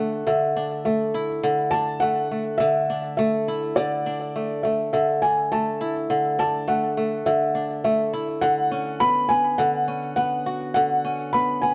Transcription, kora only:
0.00 0.26 D3 medium
0.00 0.85 A3 medium
0.00 0.56 D4 medium
0.00 0.38 E4 medium
0.27 1.43 D3 medium
0.56 1.73 D4 medium
0.85 2.01 A3 medium
1.14 3.47 E4 medium
1.43 2.60 D3 medium
1.73 2.89 D4 medium
2.02 2.31 A3 medium
2.31 3.18 A3 medium
2.60 3.76 D3 medium
2.90 4.06 D4 medium
3.19 4.35 A3 medium
3.48 5.80 E4 medium
3.77 4.93 D3 medium
4.06 5.22 D4 medium
4.36 4.64 A3 medium
4.65 5.52 A3 medium
4.93 6.10 D3 medium
5.23 6.38 D4 medium
5.52 6.67 A3 medium
5.81 8.12 E4 medium
6.10 7.26 D3 medium
6.39 7.54 D4 medium
6.68 6.97 A3 medium
6.97 7.84 A3 medium
7.26 8.42 D3 medium
7.55 8.77 D4 medium
7.84 9.84 A3 medium
8.13 9.70 E4 medium
8.42 9.58 D3 medium
8.71 9.87 C#4 medium
9.01 9.30 B3 medium
9.30 10.16 B3 medium
9.59 10.75 D3 medium
9.88 11.04 C#4 medium
10.17 11.34 B3 medium
10.46 11.74 F#4 medium
10.76 11.74 D3 medium
11.05 11.74 C#4 medium
11.34 11.63 B3 medium
11.63 11.74 B3 medium

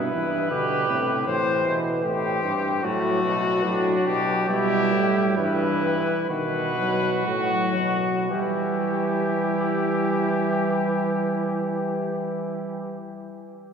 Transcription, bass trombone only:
0.00 0.12 G2 medium
0.13 0.50 G2 medium
0.51 0.88 B2 medium
0.88 1.26 A2 medium
1.27 1.65 A2 medium
1.65 2.03 B2 medium
2.04 2.43 A2 medium
2.44 2.83 G2 medium
2.83 3.23 A2 medium
3.24 3.66 B2 medium
3.65 3.94 A2 medium
4.07 4.48 B2 medium
4.49 4.95 B2 medium
4.93 5.37 A2 medium
5.38 5.96 G2 medium
6.30 7.23 B2 medium
7.27 7.77 A2 medium
7.79 8.30 B2 medium
8.31 13.01 E3 medium

